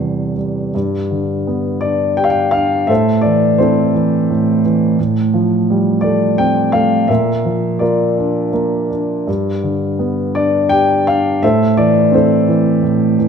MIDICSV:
0, 0, Header, 1, 2, 480
1, 0, Start_track
1, 0, Tempo, 733496
1, 482, Time_signature, 3, 2, 24, 8
1, 1435, Tempo, 700117
1, 4795, Tempo, 728155
1, 6715, Tempo, 706714
1, 8941, End_track
2, 0, Start_track
2, 0, Title_t, "Grand piano"
2, 0, Program_c, 0, 0
2, 0, Control_c, 0, 64, 127
2, 0, Note_on_c, 0, 40, 49
2, 0, Note_on_c, 0, 48, 36
2, 0, Note_on_c, 0, 55, 38
2, 0, Note_on_c, 0, 69, 43
2, 0, Note_on_c, 0, 72, 58
2, 1, Note_on_c, 0, 52, 37
2, 215, Note_off_c, 0, 72, 0
2, 220, Note_off_c, 0, 69, 0
2, 230, Note_off_c, 0, 55, 0
2, 240, Note_on_c, 0, 55, 35
2, 452, Note_off_c, 0, 40, 0
2, 458, Note_off_c, 0, 48, 0
2, 471, Note_off_c, 0, 52, 0
2, 475, Note_off_c, 0, 55, 0
2, 489, Note_on_c, 0, 43, 53
2, 490, Control_c, 0, 64, 0
2, 608, Control_c, 0, 64, 127
2, 724, Note_on_c, 0, 50, 47
2, 964, Note_on_c, 0, 59, 48
2, 1182, Note_on_c, 0, 74, 76
2, 1198, Note_on_c, 0, 62, 45
2, 1408, Note_off_c, 0, 74, 0
2, 1420, Note_on_c, 0, 79, 83
2, 1427, Note_on_c, 0, 67, 51
2, 1466, Note_on_c, 0, 77, 76
2, 1476, Note_off_c, 0, 79, 0
2, 1509, Note_on_c, 0, 79, 83
2, 1521, Note_off_c, 0, 77, 0
2, 1650, Note_off_c, 0, 50, 0
2, 1654, Note_on_c, 0, 77, 87
2, 1659, Note_off_c, 0, 62, 0
2, 1669, Note_on_c, 0, 62, 51
2, 1672, Note_off_c, 0, 79, 0
2, 1893, Note_off_c, 0, 59, 0
2, 1896, Note_off_c, 0, 43, 0
2, 1900, Note_on_c, 0, 76, 77
2, 1901, Note_off_c, 0, 67, 0
2, 1904, Note_on_c, 0, 45, 58
2, 1909, Note_off_c, 0, 62, 0
2, 1916, Note_off_c, 0, 77, 0
2, 1917, Note_on_c, 0, 69, 60
2, 1917, Note_on_c, 0, 72, 57
2, 1928, Control_c, 0, 64, 0
2, 2030, Control_c, 0, 64, 127
2, 2134, Note_off_c, 0, 76, 0
2, 2136, Note_on_c, 0, 74, 77
2, 2158, Note_on_c, 0, 52, 49
2, 2378, Note_off_c, 0, 72, 0
2, 2388, Note_on_c, 0, 72, 68
2, 2391, Note_off_c, 0, 69, 0
2, 2393, Note_off_c, 0, 74, 0
2, 2398, Note_on_c, 0, 60, 52
2, 2398, Note_on_c, 0, 64, 49
2, 2402, Note_on_c, 0, 69, 49
2, 2627, Note_off_c, 0, 52, 0
2, 2638, Note_on_c, 0, 52, 52
2, 2870, Note_off_c, 0, 45, 0
2, 2880, Note_on_c, 0, 45, 55
2, 3077, Note_off_c, 0, 72, 0
2, 3082, Note_off_c, 0, 64, 0
2, 3084, Note_off_c, 0, 69, 0
2, 3110, Note_off_c, 0, 52, 0
2, 3120, Note_on_c, 0, 52, 53
2, 3320, Note_off_c, 0, 60, 0
2, 3338, Note_off_c, 0, 45, 0
2, 3346, Note_off_c, 0, 52, 0
2, 3353, Note_on_c, 0, 45, 61
2, 3355, Control_c, 0, 64, 0
2, 3457, Control_c, 0, 64, 127
2, 3591, Note_on_c, 0, 53, 52
2, 3841, Note_on_c, 0, 55, 55
2, 4052, Note_on_c, 0, 74, 77
2, 4075, Note_on_c, 0, 57, 50
2, 4285, Note_off_c, 0, 74, 0
2, 4307, Note_on_c, 0, 79, 85
2, 4318, Note_on_c, 0, 60, 52
2, 4527, Note_off_c, 0, 53, 0
2, 4541, Note_on_c, 0, 77, 83
2, 4542, Note_off_c, 0, 57, 0
2, 4552, Note_on_c, 0, 57, 52
2, 4557, Note_off_c, 0, 79, 0
2, 4769, Note_off_c, 0, 45, 0
2, 4773, Note_off_c, 0, 55, 0
2, 4783, Note_off_c, 0, 60, 0
2, 4784, Note_on_c, 0, 76, 72
2, 4787, Note_off_c, 0, 57, 0
2, 4790, Note_on_c, 0, 46, 60
2, 4796, Note_off_c, 0, 77, 0
2, 4797, Note_on_c, 0, 70, 54
2, 4803, Control_c, 0, 64, 0
2, 4931, Control_c, 0, 64, 127
2, 5029, Note_on_c, 0, 53, 46
2, 5256, Note_on_c, 0, 74, 66
2, 5258, Note_off_c, 0, 70, 0
2, 5268, Note_on_c, 0, 58, 49
2, 5268, Note_on_c, 0, 70, 45
2, 5270, Note_on_c, 0, 65, 45
2, 5275, Note_off_c, 0, 76, 0
2, 5509, Note_on_c, 0, 62, 49
2, 5717, Note_off_c, 0, 74, 0
2, 5731, Note_off_c, 0, 58, 0
2, 5741, Note_on_c, 0, 58, 50
2, 5967, Note_off_c, 0, 53, 0
2, 5968, Note_off_c, 0, 70, 0
2, 5969, Note_off_c, 0, 65, 0
2, 5978, Note_off_c, 0, 62, 0
2, 5988, Note_on_c, 0, 62, 47
2, 6207, Note_off_c, 0, 46, 0
2, 6216, Note_off_c, 0, 58, 0
2, 6225, Note_off_c, 0, 62, 0
2, 6232, Note_on_c, 0, 43, 56
2, 6244, Control_c, 0, 64, 0
2, 6365, Control_c, 0, 64, 127
2, 6469, Note_on_c, 0, 50, 47
2, 6706, Note_on_c, 0, 59, 49
2, 6947, Note_on_c, 0, 62, 50
2, 6948, Note_on_c, 0, 74, 82
2, 7182, Note_on_c, 0, 79, 91
2, 7198, Note_on_c, 0, 67, 52
2, 7203, Note_off_c, 0, 74, 0
2, 7409, Note_off_c, 0, 50, 0
2, 7431, Note_off_c, 0, 62, 0
2, 7438, Note_off_c, 0, 79, 0
2, 7439, Note_on_c, 0, 77, 85
2, 7441, Note_on_c, 0, 62, 50
2, 7645, Note_off_c, 0, 59, 0
2, 7648, Note_off_c, 0, 43, 0
2, 7660, Note_off_c, 0, 77, 0
2, 7662, Note_off_c, 0, 67, 0
2, 7671, Note_off_c, 0, 62, 0
2, 7678, Note_on_c, 0, 45, 61
2, 7679, Note_on_c, 0, 76, 84
2, 7686, Control_c, 0, 64, 0
2, 7687, Note_on_c, 0, 72, 59
2, 7689, Note_on_c, 0, 69, 58
2, 7801, Control_c, 0, 64, 127
2, 7916, Note_on_c, 0, 74, 82
2, 7917, Note_on_c, 0, 52, 51
2, 7922, Note_off_c, 0, 76, 0
2, 8147, Note_on_c, 0, 60, 55
2, 8156, Note_off_c, 0, 72, 0
2, 8160, Note_off_c, 0, 74, 0
2, 8161, Note_off_c, 0, 69, 0
2, 8166, Note_on_c, 0, 72, 70
2, 8171, Note_on_c, 0, 64, 52
2, 8171, Note_on_c, 0, 69, 52
2, 8387, Note_off_c, 0, 52, 0
2, 8397, Note_on_c, 0, 52, 53
2, 8621, Note_off_c, 0, 45, 0
2, 8632, Note_on_c, 0, 45, 53
2, 8855, Note_off_c, 0, 72, 0
2, 8857, Note_off_c, 0, 64, 0
2, 8858, Note_off_c, 0, 69, 0
2, 8867, Note_off_c, 0, 52, 0
2, 8877, Note_on_c, 0, 52, 52
2, 8941, Note_off_c, 0, 45, 0
2, 8941, Note_off_c, 0, 52, 0
2, 8941, Note_off_c, 0, 60, 0
2, 8941, End_track
0, 0, End_of_file